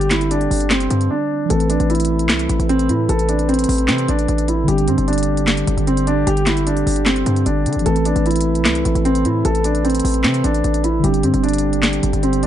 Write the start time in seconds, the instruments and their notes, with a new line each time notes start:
Already playing: 808-style bass G1, french horn section D3 C4 G4, tine electric piano D3 G3 C4 D4, grand piano G4
0.01 closed hi-hat
0.10 grand piano E4, snare, clap, closed hi-hat
0.21 closed hi-hat
0.31 grand piano D4, closed hi-hat
0.41 closed hi-hat
0.51 808-style bass G1, open hi-hat
0.60 closed hi-hat
0.70 grand piano C4, snare, clap, closed hi-hat
0.80 closed hi-hat
0.90 808-style bass G2, closed hi-hat
1.01 closed hi-hat
1.10 grand piano D4
1.46 tine electric piano E3 A3
1.50 808-style bass A1, french horn section C3 A4 B4, grand piano A4, tine electric piano B4, closed hi-hat
1.55 tine electric piano C4
1.60 closed hi-hat
1.70 grand piano D4, closed hi-hat
1.80 808-style bass A1, closed hi-hat
1.90 grand piano E4, closed hi-hat
1.95 closed hi-hat
2.00 closed hi-hat
2.05 closed hi-hat
2.19 closed hi-hat
2.29 808-style bass C2, snare, clap, closed hi-hat
2.39 closed hi-hat
2.49 808-style bass A1, closed hi-hat
2.59 808-style bass A1, closed hi-hat
2.69 grand piano C4, closed hi-hat
2.79 closed hi-hat
2.89 808-style bass A2, grand piano E4, closed hi-hat
3.09 808-style bass A1, grand piano A4, closed hi-hat
3.19 closed hi-hat
3.29 grand piano D4, closed hi-hat
3.39 closed hi-hat
3.49 grand piano C4, closed hi-hat
3.54 closed hi-hat
3.59 closed hi-hat
3.64 closed hi-hat
3.69 808-style bass A1, open hi-hat
3.78 closed hi-hat
3.88 808-style bass C3, grand piano C4, snare, clap, closed hi-hat
3.98 closed hi-hat
4.08 808-style bass A1, grand piano D4, closed hi-hat
4.19 closed hi-hat
4.28 808-style bass A1, closed hi-hat
4.38 closed hi-hat
4.48 grand piano E4, closed hi-hat
4.64 tine electric piano D3 G3
4.68 808-style bass G1, french horn section D3 C4 G4, tine electric piano C4, grand piano G4, closed hi-hat
4.73 tine electric piano D4
4.78 closed hi-hat
4.88 808-style bass G2, grand piano C4, closed hi-hat
4.98 808-style bass G1, closed hi-hat
5.08 grand piano D4, closed hi-hat
5.13 closed hi-hat
5.18 closed hi-hat
5.23 closed hi-hat
5.37 closed hi-hat
5.47 snare, clap, closed hi-hat
5.57 closed hi-hat
5.67 808-style bass G1, closed hi-hat
5.77 808-style bass G1, closed hi-hat
5.87 grand piano C4, closed hi-hat
5.97 closed hi-hat
6.07 grand piano D4, closed hi-hat
6.27 808-style bass G1, grand piano G4, closed hi-hat
6.37 closed hi-hat
6.46 grand piano E4, snare, clap, closed hi-hat
6.57 closed hi-hat
6.67 grand piano D4, closed hi-hat
6.77 closed hi-hat
6.87 808-style bass G1, open hi-hat
6.96 closed hi-hat
7.06 grand piano C4, snare, clap, closed hi-hat
7.16 closed hi-hat
7.26 808-style bass G2, closed hi-hat
7.36 closed hi-hat
7.46 808-style bass G1, grand piano D4, closed hi-hat
7.66 808-style bass D3, closed hi-hat
7.73 808-style bass G1, closed hi-hat
7.79 tine electric piano E3, closed hi-hat
7.85 808-style bass A1, french horn section C3 A4 B4, tine electric piano A3 B4, grand piano A4, closed hi-hat
7.91 tine electric piano C4
7.96 closed hi-hat
8.05 grand piano D4, closed hi-hat
8.16 808-style bass A1, closed hi-hat
8.26 grand piano E4, closed hi-hat
8.31 closed hi-hat
8.36 closed hi-hat
8.41 closed hi-hat
8.55 closed hi-hat
8.65 808-style bass C2, snare, clap, closed hi-hat
8.75 closed hi-hat
8.85 808-style bass A1, closed hi-hat
8.95 808-style bass A1, closed hi-hat
9.05 grand piano C4, closed hi-hat
9.15 closed hi-hat
9.25 808-style bass A2, grand piano E4, closed hi-hat
9.45 808-style bass A1, grand piano A4, closed hi-hat
9.55 closed hi-hat
9.64 grand piano D4, closed hi-hat
9.75 closed hi-hat
9.84 grand piano C4, closed hi-hat
9.90 closed hi-hat
9.95 closed hi-hat
10.00 closed hi-hat
10.04 808-style bass A1, open hi-hat
10.14 closed hi-hat
10.24 808-style bass C3, grand piano C4, snare, clap, closed hi-hat
10.34 closed hi-hat
10.44 808-style bass A1, grand piano D4, closed hi-hat
10.54 closed hi-hat
10.64 808-style bass A1, closed hi-hat
10.74 closed hi-hat
10.84 grand piano E4, closed hi-hat
11.00 tine electric piano D3 G3
11.04 808-style bass G1, french horn section D3 C4 G4, tine electric piano C4, grand piano G4, closed hi-hat
11.09 tine electric piano D4
11.14 closed hi-hat
11.23 808-style bass G2, grand piano C4, closed hi-hat
11.34 808-style bass G1, closed hi-hat
11.43 grand piano D4, closed hi-hat
11.49 closed hi-hat
11.53 closed hi-hat
11.58 closed hi-hat
11.73 closed hi-hat
11.83 snare, clap, closed hi-hat
11.93 closed hi-hat
12.03 808-style bass G1, closed hi-hat
12.13 808-style bass G1, closed hi-hat
12.23 grand piano C4, closed hi-hat
12.33 closed hi-hat
12.43 grand piano D4, closed hi-hat